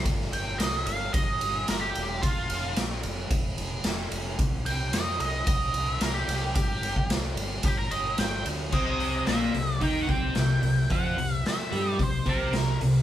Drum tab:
CC |----------------|----------------|----------------|----------------|
RD |x-x-x-x-x-x-x-x-|x-x-x-x-x-x-x-x-|x-x-x-x-x-x-x-x-|x-x-x-x-x-x-x-x-|
HH |----------------|----------------|----------------|----------------|
SD |-o--o-------o---|----o-------o---|----o-------o-o-|----o-------o---|
BD |o-------o-------|o-------o-------|o-------o-------|o--o----o-------|

CC |x---------------|----------------|
RD |----------------|----------------|
HH |--o-o-o-o-o-o-o-|o-o-o-o-o-o-o-o-|
SD |----o-------o---|----o-------o---|
BD |o-------o-o-----|o-------o-o-----|